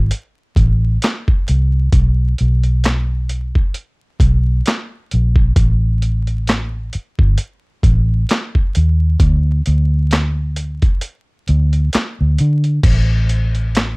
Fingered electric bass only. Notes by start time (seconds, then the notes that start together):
0.58 A1
1.49 C2
1.94 B1
2.41 B1
4.21 B1
5.13 A#1
5.57 A1
6.95 muted fingered electric bass stroke
7.20 G1
7.85 A1
8.77 D#2
9.21 D2
9.67 D2
11.49 D2
11.95 muted fingered electric bass stroke
12.21 D2
12.40 D3
12.85 A1